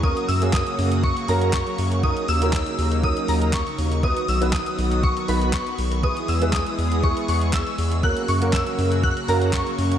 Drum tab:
HH |-xox-xox-xox-xox|-xox-xox-xox-xox|-xox-xox-xox-xox|-xox-xox-xox-xox|
CP |----x-------x---|----x-------x---|----x-------x---|----x-------x---|
SD |----o-------o---|----o-------o---|----o-------o---|----o-------o---|
BD |o---o---o---o---|o---o---o---o---|o---o---o---o---|o---o---o---o---|

HH |-xox-xox-xox-xox|
CP |----x-------x---|
SD |----o-------o---|
BD |o---o---o---o---|